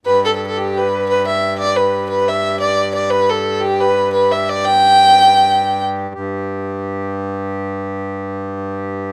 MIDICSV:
0, 0, Header, 1, 3, 480
1, 0, Start_track
1, 0, Key_signature, 1, "major"
1, 0, Tempo, 338409
1, 71, Time_signature, 9, 3, 24, 8
1, 12939, End_track
2, 0, Start_track
2, 0, Title_t, "Fiddle"
2, 0, Program_c, 0, 110
2, 82, Note_on_c, 0, 71, 81
2, 322, Note_off_c, 0, 71, 0
2, 348, Note_on_c, 0, 69, 73
2, 483, Note_off_c, 0, 69, 0
2, 505, Note_on_c, 0, 69, 45
2, 647, Note_off_c, 0, 69, 0
2, 664, Note_on_c, 0, 69, 69
2, 813, Note_on_c, 0, 67, 66
2, 834, Note_off_c, 0, 69, 0
2, 1096, Note_on_c, 0, 71, 72
2, 1118, Note_off_c, 0, 67, 0
2, 1530, Note_off_c, 0, 71, 0
2, 1542, Note_on_c, 0, 71, 85
2, 1773, Note_off_c, 0, 71, 0
2, 1793, Note_on_c, 0, 76, 72
2, 2208, Note_off_c, 0, 76, 0
2, 2250, Note_on_c, 0, 74, 95
2, 2499, Note_on_c, 0, 71, 77
2, 2520, Note_off_c, 0, 74, 0
2, 2952, Note_off_c, 0, 71, 0
2, 2967, Note_on_c, 0, 71, 78
2, 3231, Note_on_c, 0, 76, 79
2, 3252, Note_off_c, 0, 71, 0
2, 3678, Note_off_c, 0, 76, 0
2, 3685, Note_on_c, 0, 74, 81
2, 4136, Note_off_c, 0, 74, 0
2, 4179, Note_on_c, 0, 74, 82
2, 4398, Note_on_c, 0, 71, 95
2, 4419, Note_off_c, 0, 74, 0
2, 4669, Note_on_c, 0, 69, 79
2, 4690, Note_off_c, 0, 71, 0
2, 5114, Note_on_c, 0, 67, 82
2, 5136, Note_off_c, 0, 69, 0
2, 5393, Note_on_c, 0, 71, 83
2, 5415, Note_off_c, 0, 67, 0
2, 5840, Note_off_c, 0, 71, 0
2, 5855, Note_on_c, 0, 71, 81
2, 6120, Note_on_c, 0, 76, 76
2, 6141, Note_off_c, 0, 71, 0
2, 6369, Note_on_c, 0, 74, 92
2, 6390, Note_off_c, 0, 76, 0
2, 6587, Note_on_c, 0, 79, 116
2, 6608, Note_off_c, 0, 74, 0
2, 8275, Note_off_c, 0, 79, 0
2, 12939, End_track
3, 0, Start_track
3, 0, Title_t, "Accordion"
3, 0, Program_c, 1, 21
3, 76, Note_on_c, 1, 43, 63
3, 8697, Note_off_c, 1, 43, 0
3, 8719, Note_on_c, 1, 43, 68
3, 12939, Note_off_c, 1, 43, 0
3, 12939, End_track
0, 0, End_of_file